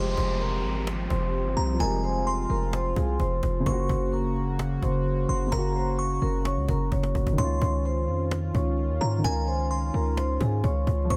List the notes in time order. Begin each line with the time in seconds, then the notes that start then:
Already playing: F1 F3 G#3 C4 G4 C5 C6, downlifter
0.00 G4
0.17 F1, cajon bass
0.40 A#4 A#5, cajon slap
0.64 G#1, cajon slap
0.87 cajon slap
1.10 F1 C5 C6, cajon bass
1.34 cajon slap
1.45 G1
1.57 C2 A#5
1.74 F3
1.79 F1 G#3 F4 A#4 G#5 A#5, cajon bass
1.85 G3
2.03 C5 C6, cajon slap
2.15 cajon slap
2.27 C6, cajon slap
2.50 F1 A#4 A#5, cajon slap
2.73 C5 C6, cajon slap
2.96 C2 G#4 G#5, cajon bass
3.20 F1 C5 C6, cajon bass
3.43 F1, cajon bass
3.58 C#3, cajon slap
3.66 F#1 C#3 A#3 F#4 C5 C6 C#6, cajon bass
3.72 F#4
3.89 F#1, cajon bass
4.01 cajon slap
4.12 A#4 A#5, cajon slap
4.36 cajon slap
4.59 cajon slap
4.82 F#1 C5 C6, cajon bass
5.06 cajon slap
5.29 F#1 C6
5.47 C#3
5.52 F#1 A#3 A#4 A#5, cajon bass
5.58 F#4
5.76 C5 C6, cajon slap
5.87 cajon slap
5.99 C#6, cajon slap
6.22 F#1 A#4 A#5, cajon slap
6.45 C#5 C#6, cajon slap
6.57 C#2
6.68 F#1 A#4 A#5, cajon bass
6.92 F#1 C#5 C#6, cajon bass
7.00 cajon slap
7.03 cajon slap
7.07 cajon slap
7.15 F#1, cajon bass
7.27 F#1, cajon bass
7.32 D#3
7.38 C#2 D#3 C#4 F4 C#5 C6 C#6, cajon bass
7.44 F4
7.62 C#2, cajon bass
7.85 C5 C6, cajon slap
8.08 F2, cajon slap
8.31 cajon slap
8.55 C#2 C#5 C#6, cajon bass
8.78 cajon slap
8.90 D#2
9.01 G#2 A#5
9.18 D#3
9.24 C#2 C#4 A#4 G#5 A#5, cajon bass
9.30 F4
9.47 C5 C6, cajon slap
9.59 cajon slap
9.71 C6, cajon slap
9.94 C#2 A#4 A#5, cajon slap
10.17 C5 C6, cajon slap
10.40 G#2 G#4 G#5, cajon bass
10.64 C#2 C#5 C#6, cajon bass
10.87 C#2, cajon bass
11.03 F3, cajon slap
11.10 C2 F3 C4 G4 C5 C6 C#6, cajon bass